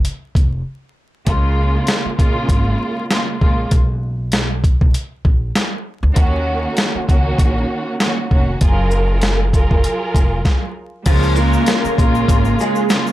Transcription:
0.05 closed hi-hat
0.35 upright bass F1, kick, closed hi-hat
1.26 upright bass C#2, string section C#3 G#3 A#3 F4, kick, closed hi-hat
1.87 snare, closed hi-hat
2.05 muted upright bass stroke
2.17 upright bass A#1, string section C#3 G#3 A#3 F4, kick, closed hi-hat
2.49 upright bass G#1, kick, closed hi-hat
3.10 string section C#3 G#3 A#3 F4, snare, closed hi-hat
3.41 upright bass A#1, string section C#3 G#3 A#3 F4, kick
3.71 upright bass B1, kick, closed hi-hat
4.32 snare, closed hi-hat
4.64 kick, closed hi-hat
4.81 upright bass B1, kick
4.94 closed hi-hat
5.25 upright bass A#1, kick
5.55 snare, closed hi-hat
6.03 upright bass D2
6.15 upright bass D#2, string section D#3 A#3 C#4 F#4, kick, closed hi-hat
6.77 snare, closed hi-hat
6.95 muted upright bass stroke
7.08 upright bass C#2, string section D#3 A#3 C#4 F#4, kick, closed hi-hat
7.39 upright bass A#1, kick, closed hi-hat
8.00 string section D#3 A#3 C#4 F#4, snare, closed hi-hat
8.31 upright bass F1, string section D#3 A#3 C#4 F#4, kick
8.61 upright bass F#1, string section F#3 F4 G#4 A#4, kick, closed hi-hat
8.91 shaker
9.22 snare, closed hi-hat
9.53 string section F#3 F4 G#4 A#4, kick, closed hi-hat, shaker
9.71 upright bass F#1, kick
9.84 closed hi-hat
10.15 upright bass F1, kick, closed hi-hat, shaker
10.45 kick, snare
11.06 upright bass C#2, string section C#3 G#3 A#3 F4, clean electric guitar F3 F4, horn section C#4 F4 A#4, tonewheel organ G#4 C#5 F5 A#5, kick, closed hi-hat, crash, shaker
11.23 shaker
11.36 clean electric guitar A#3 A#4, shaker
11.53 shaker
11.66 snare, closed hi-hat, shaker
11.84 muted upright bass stroke, shaker
11.96 upright bass A#1, string section C#3 G#3 A#3 F4, kick, closed hi-hat, shaker
12.15 shaker
12.28 upright bass G#1, kick, closed hi-hat, shaker
12.45 shaker
12.59 clean electric guitar G#4, shaker
12.61 clean electric guitar G#3, shaker
12.75 shaker
12.89 string section C#3 G#3 A#3 F4, snare, closed hi-hat, shaker
13.07 shaker

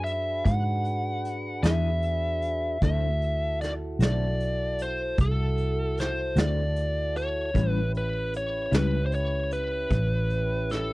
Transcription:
Already playing: fingered electric bass F#2, tonewheel organ D4 F#4 G#4 B4
0.04 lead electric guitar E5, closed hi-hat
0.45 fingered electric bass G#2, lead electric guitar F#5, kick, closed hi-hat
0.85 closed hi-hat
1.25 closed hi-hat
1.63 fingered electric bass E2, clean electric guitar E3 B3 D4 G#4, lead electric guitar E5, snare, closed hi-hat
2.02 closed hi-hat
2.42 closed hi-hat
2.82 fingered electric bass D2, clean electric guitar D3 A3 C4 F#4, tonewheel organ E4 F#4 A4, lead electric guitar E5, kick, closed hi-hat
3.22 closed hi-hat
3.61 lead electric guitar D5, snare, closed hi-hat
3.99 fingered electric bass B1, clean electric guitar D3 A3 C4 F#4, snare, closed hi-hat
4.03 lead electric guitar D5
4.40 closed hi-hat
4.78 lead electric guitar C5, closed hi-hat
5.18 fingered electric bass C2, lead electric guitar A4, kick, closed hi-hat
5.57 closed hi-hat
5.98 lead electric guitar C5, snare, closed hi-hat
6.36 fingered electric bass D2, clean electric guitar D3 A3 C4 F#4, lead electric guitar D5, snare, closed hi-hat
6.76 closed hi-hat
7.16 lead electric guitar C#5, closed hi-hat
7.54 fingered electric bass A1, clean electric guitar A2 G3 C#4 E4, tonewheel organ C#4 E4 G4 B4, kick, closed hi-hat
7.71 lead electric guitar B4
7.95 lead electric guitar B4, closed hi-hat
8.34 lead electric guitar C#5, closed hi-hat
8.71 fingered electric bass C#2, clean electric guitar A2 G3 C#4 E4, lead electric guitar B4, snare, closed hi-hat
9.06 lead electric guitar C5
9.12 lead electric guitar C#5, closed hi-hat
9.51 lead electric guitar B4, closed hi-hat
9.90 fingered electric bass A1, kick, closed hi-hat
10.30 closed hi-hat
10.69 lead electric guitar A4, snare, closed hi-hat

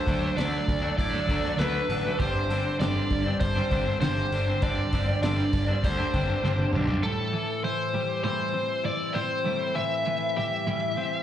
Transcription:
Already playing: lead electric guitar C5
0.05 picked electric bass D2, clean electric guitar D3 F#3 A3 D4, kick, open hi-hat
0.21 clean electric guitar A3 D4
0.25 clean electric guitar F#3
0.36 picked electric bass D2, clean electric guitar D3 F#3 A3 D4, lead electric guitar D5, snare, open hi-hat
0.52 clean electric guitar F#3 A3 D4
0.68 picked electric bass D2, kick, open hi-hat
0.82 clean electric guitar F#3 A3 D4, muted clean electric guitar stroke
0.98 picked electric bass A2, lead electric guitar D5, kick, open hi-hat
1.10 clean electric guitar F#3 A3 D4
1.26 picked electric bass D2, clean electric guitar D3 F#3 A3 D4, kick, open hi-hat
1.43 clean electric guitar F#3 A3 D4, muted clean electric guitar stroke, snare
1.56 picked electric bass D2, clean electric guitar D3 F#3 A3 D4, lead electric guitar B4, snare, open hi-hat
1.87 picked electric bass A1, clean electric guitar D3 F#3 A3 D4, open hi-hat
2.03 clean electric guitar F#3 A3 D4
2.17 picked electric bass G1, clean electric guitar G2 D3 G3 C4 D4, lead electric guitar C5, kick, open hi-hat
2.48 clean electric guitar D3 G3 C4 D4, open hi-hat
2.63 clean electric guitar G3 C4 D4
2.79 picked electric bass G1, clean electric guitar G2 D3 G3 C4 D4, lead electric guitar D5, snare, open hi-hat
2.96 clean electric guitar G3 C4 D4
3.10 picked electric bass G1, muted clean electric guitar stroke, kick, open hi-hat
3.25 clean electric guitar G3 C4 D4, muted clean electric guitar stroke
3.40 picked electric bass G1, lead electric guitar C5, kick, open hi-hat
3.55 clean electric guitar G3 C4 D4
3.70 picked electric bass G1, clean electric guitar D3 G3 C4 D4, kick, open hi-hat
3.86 clean electric guitar G3 C4 D4, muted clean electric guitar stroke
4.00 picked electric bass G1, clean electric guitar G2 D3 G3 C4 D4, lead electric guitar C5, snare, open hi-hat
4.18 snare
4.32 picked electric bass G1, clean electric guitar D3 G3 C4 D4, open hi-hat
4.46 clean electric guitar G3 C4 D4
4.62 picked electric bass G1, clean electric guitar G2 D3 G3 C4 D4, lead electric guitar D5, kick, open hi-hat
4.92 picked electric bass G1, clean electric guitar D3 G3 C4 D4, kick, open hi-hat
5.07 clean electric guitar G3 C4 D4
5.22 picked electric bass G1, clean electric guitar G2 D3 G3 C4 D4, lead electric guitar D5, snare, open hi-hat
5.37 clean electric guitar G3 C4 D4
5.53 picked electric bass G1, muted clean electric guitar stroke, kick, open hi-hat
5.68 clean electric guitar G3 C4 D4, muted clean electric guitar stroke
5.84 picked electric bass D2, lead electric guitar C5, kick, open hi-hat
5.98 clean electric guitar G3 C4 D4
6.14 picked electric bass G1, clean electric guitar D3 G3 C4 D4, kick, open hi-hat
6.28 clean electric guitar G3 C4 D4, muted clean electric guitar stroke
6.43 picked electric bass G1, clean electric guitar G2 D3 G3 C4 D4, snare
6.58 high tom
6.73 picked electric bass B1, clean electric guitar D3 G3 C4, mid tom
6.77 clean electric guitar D4
6.88 clean electric guitar G3 C4 D4, floor tom
7.03 clean electric guitar A2 E3 G3, lead electric guitar A4
7.34 clean electric guitar A2 E3
7.64 clean electric guitar A2 E3, lead electric guitar C5
7.94 clean electric guitar A2 E3 G3
8.24 clean electric guitar A2 E3 G3, lead electric guitar C5
8.54 clean electric guitar A2 E3 C4
8.84 clean electric guitar A2 E3 E4, lead electric guitar D5
9.14 clean electric guitar A2 E3 C4, lead electric guitar C5
9.45 clean electric guitar A2 E3 G3
9.76 clean electric guitar A2 E3, lead electric guitar E5
10.07 clean electric guitar A2 E3
10.36 clean electric guitar A2 E3 G3, lead electric guitar E5
10.67 clean electric guitar A2 E3 G3
10.97 clean electric guitar A2 E3 C4

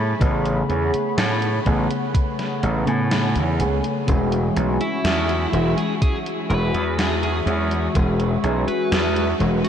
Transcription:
Already playing: slap bass A2, fm electric piano C#3 A3 B3 G#4, ambient pad A3 C#5 G#5 B5
0.20 slap bass A1, fm electric piano C#3 A3 B3 G#4, ambient pad F#5, kick, closed hi-hat
0.45 closed hi-hat
0.69 slap bass E2, clean electric guitar B3 C#4 G#4, closed hi-hat
0.93 muted slap bass stroke, closed hi-hat
1.18 slap bass A2, snare, closed hi-hat
1.42 closed hi-hat
1.65 slap bass A1, fm electric piano C#3 A3 B3 G#4, clean electric guitar B3 C#4 G#4, kick, closed hi-hat
1.90 closed hi-hat
2.15 kick, closed hi-hat
2.39 snare, closed hi-hat
2.63 slap bass A1, clean electric guitar B3 C#4 A4, closed hi-hat
2.86 slap bass A2, fm electric piano C#3 A3 B3 G#5, closed hi-hat
3.11 snare, closed hi-hat
3.35 slap bass E2, closed hi-hat
3.60 slap bass C#2, clean electric guitar B3 C#4 G#4, closed hi-hat
3.84 closed hi-hat
4.07 slap bass E1, fm electric piano E3 G#3 C#4 F#4, ambient pad F#4 E5 G#5 C#6, kick, closed hi-hat
4.32 closed hi-hat
4.56 slap bass B1, clean electric guitar G#3 C#4 F#4, closed hi-hat
4.81 lead electric guitar E4, closed hi-hat
5.04 slap bass E2, snare, closed hi-hat
5.29 closed hi-hat
5.52 slap bass E1, fm electric piano E3 G#3 C#4 F#4, clean electric guitar G#3 C#4 F#4, closed hi-hat
5.77 lead electric guitar G#4, closed hi-hat
6.01 lead electric guitar G#4, kick, closed hi-hat
6.26 closed hi-hat
6.50 slap bass E1, clean electric guitar G#3 C#4 E4, lead electric guitar B4, closed hi-hat
6.74 slap bass E2, closed hi-hat
6.98 lead electric guitar G#4, snare, closed hi-hat
7.23 lead electric guitar G#4, closed hi-hat
7.46 slap bass E2, clean electric guitar G#3 C#4 F#4, closed hi-hat
7.71 closed hi-hat
7.94 slap bass E1, fm electric piano E3 G#3 C#4 F#4, kick, closed hi-hat
8.20 closed hi-hat
8.43 slap bass B1, clean electric guitar G#3 C#4 G#4, closed hi-hat
8.68 lead electric guitar B4, muted slap bass stroke, closed hi-hat
8.92 slap bass E2, snare, closed hi-hat
9.16 closed hi-hat
9.39 slap bass E1, fm electric piano E3 G#3 C#4 F#4, clean electric guitar G#3 C#4 F#4, closed hi-hat
9.64 lead electric guitar F#4, closed hi-hat

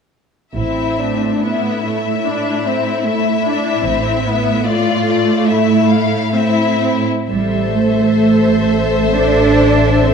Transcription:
0.56 double bass section A1, cello section A2, viola section C4, violin section E4 E5
0.99 violin section D4
1.42 viola section B3, violin section E4 E5
1.83 viola section A3
2.23 viola section D4, violin section E4
2.66 viola section C4
3.06 viola section A3, violin section E5
3.45 viola section D4
3.84 double bass section A1, cello section A2, viola section C4
4.25 viola section B3
4.64 viola section A3, violin section F4 D5
5.06 violin section D5
5.47 violin section E4 E5
5.89 violin section F5
6.34 viola section C4, violin section E4 E5
7.29 double bass section A1, cello section G3, viola section A4, violin section C5 E5
7.74 cello section A3
9.15 cello section D4
10.02 cello section C4

